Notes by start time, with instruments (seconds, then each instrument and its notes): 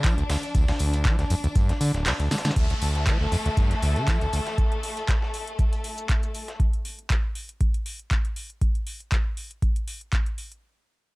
Already playing: string section D4
0.04 acid bass F3, kick, snare, clap, closed hi-hat, tambourine, shaker
0.18 acid bass D2, closed hi-hat, tambourine
0.30 acid bass D2, snare, open hi-hat, tambourine
0.43 closed hi-hat, tambourine
0.55 acid bass D2, kick, closed hi-hat, tambourine, shaker
0.68 acid bass D2, snare, closed hi-hat, open hi-hat, tambourine
0.79 acid bass D2, open hi-hat, tambourine, shaker
0.93 closed hi-hat, tambourine
1.05 acid bass F3, kick, snare, clap, closed hi-hat, tambourine, shaker
1.19 acid bass D2, snare, closed hi-hat, tambourine
1.30 acid bass F2, open hi-hat, tambourine, shaker
1.44 acid bass D2, closed hi-hat, tambourine
1.56 acid bass G2, kick, closed hi-hat, tambourine, shaker
1.69 acid bass D2, snare, closed hi-hat, tambourine
1.81 acid bass D3, open hi-hat, tambourine, shaker
1.94 acid bass D1, snare, closed hi-hat, tambourine
2.06 acid bass D2, snare, clap, closed hi-hat, open hi-hat, tambourine
2.20 acid bass D2, closed hi-hat, tambourine
2.31 acid bass D3, snare, open hi-hat, tambourine, shaker
2.38 snare, shaker
2.45 acid bass D3, snare, closed hi-hat, tambourine, shaker
2.51 snare, shaker
2.56 acid bass D2, string section A3 A4, kick, closed hi-hat, tambourine, crash, downlifter, shaker
2.70 acid bass D2, closed hi-hat, tambourine
2.82 acid bass D2, open hi-hat, tambourine, shaker
2.95 snare, closed hi-hat, tambourine
3.07 acid bass F3, kick, snare, clap, closed hi-hat, tambourine, shaker
3.21 acid bass D2, snare, tambourine
3.32 acid bass F2, open hi-hat, tambourine, shaker
3.46 acid bass D2, closed hi-hat, tambourine
3.57 acid bass G2, kick, closed hi-hat, tambourine, shaker
3.71 acid bass D2, snare, closed hi-hat, tambourine
3.82 acid bass D2, open hi-hat, tambourine, shaker
3.96 acid bass D3, closed hi-hat, tambourine
4.08 acid bass F3, kick, snare, clap, closed hi-hat, tambourine, shaker
4.21 acid bass D2, closed hi-hat, tambourine
4.33 acid bass D2, open hi-hat, tambourine, shaker
4.46 snare, closed hi-hat, tambourine
4.58 kick, closed hi-hat, shaker
4.72 closed hi-hat
4.83 open hi-hat, shaker
4.97 closed hi-hat
5.09 kick, snare, clap, closed hi-hat, shaker
5.22 snare
5.34 open hi-hat, shaker
5.47 closed hi-hat
5.59 kick, closed hi-hat, shaker
5.73 closed hi-hat
5.84 open hi-hat, shaker
5.98 closed hi-hat, shaker
6.09 kick, clap, closed hi-hat
6.23 closed hi-hat, shaker
6.35 open hi-hat, shaker
6.48 snare, closed hi-hat
6.60 kick, closed hi-hat
6.73 closed hi-hat
6.85 open hi-hat
6.99 closed hi-hat
7.10 kick, clap, closed hi-hat
7.35 open hi-hat
7.49 closed hi-hat
7.61 kick, closed hi-hat
7.74 closed hi-hat
7.86 open hi-hat
7.99 closed hi-hat
8.11 kick, clap, closed hi-hat
8.25 closed hi-hat
8.36 open hi-hat
8.50 closed hi-hat
8.61 kick, closed hi-hat
8.75 closed hi-hat
8.87 open hi-hat
9.00 closed hi-hat
9.12 kick, clap, closed hi-hat
9.37 open hi-hat
9.51 closed hi-hat
9.62 kick, closed hi-hat
9.76 closed hi-hat
9.88 open hi-hat
10.01 closed hi-hat
10.13 kick, clap, closed hi-hat
10.26 closed hi-hat
10.38 open hi-hat
10.52 closed hi-hat